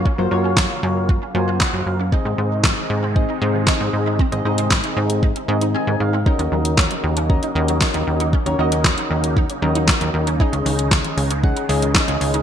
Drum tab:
HH |----------------|----------------|-x-x-x-x-x-x----|-x-x-x-x-x-x-x-x|
CP |----x-------x---|----x-------x---|----x-----------|----x-------x---|
SD |----o-------o---|----o-------o---|----o-----------|----o-------o---|
BD |o---o---o---o---|o---o---o---o---|o---o---o-------|o---o---o---o---|

HH |-x-x-x-x-x-x-x-x|-xox-xox-xox-xox|
CP |----x-------x---|----x-------x---|
SD |----o-------o---|----o-------o---|
BD |o---o---o---o---|o---o---o---o---|